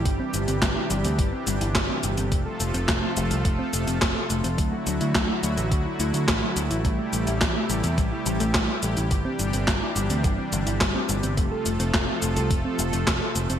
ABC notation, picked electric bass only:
X:1
M:4/4
L:1/16
Q:1/4=106
K:C
V:1 name="Picked electric bass" clef=bass
G,,, z G,,, G,,, G,,, z G,,, D,, G,,, z G,,, G,,, G,,, z G,,, G,,, | F,,, z F,,, F,,, F,,, z F,,, C,, F,,, z F,,, F,,, F,,, z F,,, F,,, | D,, z D,, D,, D,, z D,, A,,, D,, z D,, D,, A,,, z D,, A,,, | A,,, z A,,, A,,, A,,, z A,,, E,, A,,, z A,,, A,,, z2 A,,, A,,, |
G,,, z G,,, G,,, G,,, z G,,, D,, G,,, z G,,, G,,, G,,, z G,,, G,,, | F,,, z F,,, F,,, F,,, z F,,, C,, F,,, z F,,, F,,, z2 F,,, F,,, |]